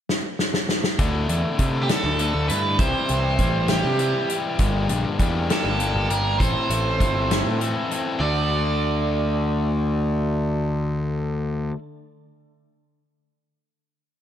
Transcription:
0.09 snare
0.39 snare
0.54 snare
0.69 snare
0.84 snare
0.99 D2 D3 A3 D4 E4, kick, closed hi-hat
1.29 E2 A3 D4 E4, closed hi-hat
1.58 C3 D3 A3 D4 E4, kick, closed hi-hat
1.83 G4
1.89 A3 D4 E4 A4, snare, closed hi-hat
2.04 D2
2.19 D3 A3 D4 E4, closed hi-hat
2.35 D2
2.49 G2 A3 D4 E4 B4, closed hi-hat
2.79 C2 C3 E3 G3 E4 G4 C5, kick, closed hi-hat
3.09 C2 G3 E4 G4, closed hi-hat
3.39 A1 E3 G3 E4 G4, kick, closed hi-hat
3.68 G3 E4 G4, snare, closed hi-hat
3.85 C3
3.99 E3 G3 E4 G4, closed hi-hat
4.29 G3 E4 G4, closed hi-hat
4.59 G1 G2 D3 G3 A#3 D4 G4, kick, closed hi-hat
4.89 A#1 G3 A#3 D4 G4, closed hi-hat
5.19 E2 G3 A#3 D4 G4, kick, closed hi-hat
5.49 G3 A#3 D4 G4 A4, snare, closed hi-hat
5.64 G1
5.79 G3 A#3 D4 G4, closed hi-hat
5.95 G1
6.09 G1 G3 A#3 D4 G4 A#4, closed hi-hat
6.39 A1 A2 E3 C4 E4 A4 C5, kick, closed hi-hat
6.69 A1 C4 E4 A4, closed hi-hat
7.00 G1 E3 C4 E4 A4, kick, closed hi-hat
7.30 C4 E4 A4, snare, closed hi-hat
7.46 A2
7.60 E3 C4 E4 A4, closed hi-hat
7.91 C4 E4 A4, closed hi-hat
8.20 D2 D3 A3 D4 D5
8.24 F#4

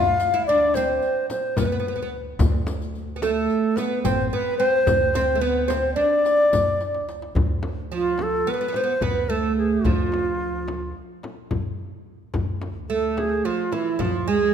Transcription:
Already playing: D2 F4 F5
0.20 riq, darbuka tek
0.34 E4, riq, darbuka ka
0.47 D4 D5, riq, darbuka ka
0.74 C4 C5, riq, darbuka tek, frame drum
1.02 riq
1.30 C5, riq, darbuka tek, frame drum
1.57 D2 B3 B4, riq, frame drum, darbuka dum
1.65 B3
1.72 B3
1.80 B3
1.85 B3, darbuka ka
1.96 B3
2.02 B3
2.39 D2, riq, frame drum, darbuka dum
2.67 riq, darbuka tek, frame drum
2.81 riq, darbuka ka
2.94 riq, darbuka ka
3.16 B3
3.22 A3 A4, riq, frame drum
3.50 riq
3.76 B3 B4, riq, darbuka tek, frame drum
4.03 A1 C4 C5, riq, darbuka dum, frame drum
4.32 B3 B4, darbuka ka
4.57 C4 C5
4.86 D2, riq, darbuka dum, frame drum
5.14 C4, riq, darbuka tek, frame drum
5.28 darbuka ka
5.35 A3
5.41 B3 B4, riq, darbuka ka
5.68 C4 C5, riq, darbuka tek, frame drum
5.95 D4 D5
6.25 riq, darbuka tek
6.53 D2, riq, darbuka dum, frame drum
6.80 riq, darbuka tek
6.95 darbuka ka
7.09 riq, darbuka tek
7.22 darbuka ka
7.35 D2, darbuka dum, frame drum
7.63 darbuka tek, frame drum
7.77 darbuka ka
7.91 F3 F4, darbuka ka
8.18 darbuka tek, frame drum
8.22 A4
8.47 B3 B4
8.54 B3
8.61 B3
8.68 B3
8.73 B3 C5, darbuka tek, frame drum
8.84 B3
9.01 D2 B3 B4, darbuka dum, frame drum
9.29 A3 A4, darbuka ka
9.57 G#4
9.84 D2 F3 F4, darbuka dum, frame drum
10.12 darbuka tek, frame drum
10.27 darbuka ka
10.40 darbuka ka
10.68 darbuka tek, frame drum
10.95 darbuka ka
11.23 darbuka tek, frame drum
11.51 D2, darbuka dum, frame drum
11.79 darbuka ka
12.34 D2, frame drum, darbuka dum
12.62 darbuka tek, frame drum
12.76 darbuka ka
12.89 A3 A4, darbuka ka
13.17 G#4, darbuka tek, frame drum
13.45 F3 F4
13.72 E3 E4, darbuka tek, frame drum
13.99 D2 F3 F4, darbuka dum, frame drum
14.27 G#3 G#4, darbuka ka

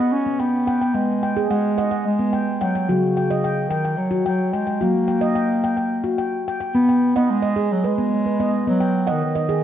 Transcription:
Already playing: B3 D#5
0.00 F#5
0.12 C#4
0.26 B3
0.40 B3 G5
0.67 F#5 G5
0.82 G5
0.94 G#3 B3
1.23 G5
1.37 G#4
1.50 G#3 F#5
1.78 D#5 F#5
1.91 F#5
2.06 G#3
2.19 B3
2.33 G5
2.61 F#3 F#5 G5
2.75 G5
2.89 C#3 F#3 F#4
3.17 G5
3.31 D#5
3.44 G5
3.69 D#3 G5
3.85 G5
3.97 F#3
4.11 F#4
4.26 F#3 G5
4.53 G#3 G5
4.67 G5
4.81 F#3 A#3 F#4
5.08 G5
5.21 D#5
5.35 G5
5.64 G5
5.77 G5
6.04 F#4
6.18 G5
6.48 G5
6.60 G5
6.75 B3
6.89 G5
7.16 B3 D#5 F#5
7.30 G#3
7.42 D#5
7.56 G#4
7.72 F#3
7.84 G#3 B4
7.98 B3
8.26 B4
8.40 B3 D#5
8.67 F#3 B3
8.80 G5
9.07 D#5 F#5
9.11 D#3
9.26 D#3
9.35 D#5
9.49 G#4

